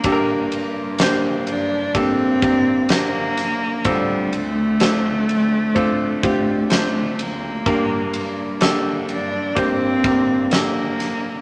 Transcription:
<<
  \new Staff \with { instrumentName = "Grand piano" } { \time 4/4 \key g \minor \tempo 4 = 63 <bes d' g' a' bes'>4 <bes d' g' c''>4 <bes d' g' a'>8 <bes d' g' bes'>8 <bes d' g' c''>4 | <c' d' f' a'>4 <c' d' f' a'>4 <c' d' f' a'>8 <c' d' f' g'>8 <c' d' f' c''>4 | <bes d' g' bes'>4 <bes d' g' a'>4 <bes d' g' c''>8 <bes d' g' bes'>8 <bes d' g' a'>4 | }
  \new Staff \with { instrumentName = "Grand piano" } { \clef bass \time 4/4 \key g \minor g,4. r2 r8 | d4. r2 r8 | g,4. r2 r8 | }
  \new Staff \with { instrumentName = "Cello" } { \time 4/4 \key g \minor bes4 r8 d'8 c'4 bes4 | g8 a2~ a8 a8 bes8~ | bes4 r8 d'8 c'4 bes4 | }
  \new Staff \with { instrumentName = "Cello section" } { \clef bass \time 4/4 \key g \minor g,4. g,8 g,4. r8 | d,4. d,8 d,4. d,8 | g,4. g,8 g,4. r8 | }
  \new DrumStaff \with { instrumentName = "Drums" } \drummode { \time 4/4 <bd cymr>8 cymr8 <cymr sn>8 cymr8 <bd cymr>8 <bd cymr>8 <cymr sn>8 <cymr sn>8 | <bd cymr>8 cymr8 <cymr sn>8 cymr8 <bd cymr>8 <bd cymr>8 <cymr sn>8 cymr8 | <bd cymr>8 cymr8 <cymr sn>8 cymr8 <bd cymr>8 <bd cymr>8 <cymr sn>8 <cymr sn>8 | }
>>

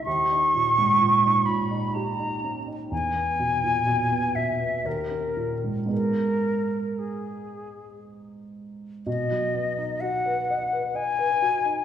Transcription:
<<
  \new Staff \with { instrumentName = "Flute" } { \time 3/4 \key gis \minor \tempo 4 = 62 cis'''4. b''8 ais''4 | gis''4. e''8 ais'8 r8 | ais'4 gis'4 r4 | \key b \major dis''4 fis''4 gis''4 | }
  \new Staff \with { instrumentName = "Grand piano" } { \time 3/4 \key gis \minor dis,16 dis'16 ais,16 gis,16 ais,16 dis'16 ais,16 dis'16 g'16 dis'16 cis'16 dis'16 | e,16 b16 b,16 ais,16 b,16 b16 b,16 b16 dis,16 cis'16 ais,16 gis,16 | <gis, b dis' gis'>2. | \key b \major b,16 fis16 b16 dis'16 fis'16 b'16 dis''16 b'16 dis''16 b'16 fis'16 dis'16 | }
>>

